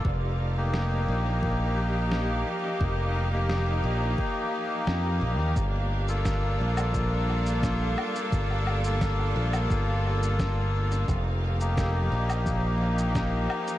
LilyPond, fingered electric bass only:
\new Staff \with { instrumentName = "Fingered electric bass" } { \clef bass \time 4/4 \key g \minor \tempo 4 = 87 f,,4. bes,,2 r8 | f,,4. bes,,8 r4 f,8 bes,,16 ees,16 | g,,4. bes,,2 r8 | g,,4. bes,,8 g,,2 |
f,,4. bes,,2 r8 | }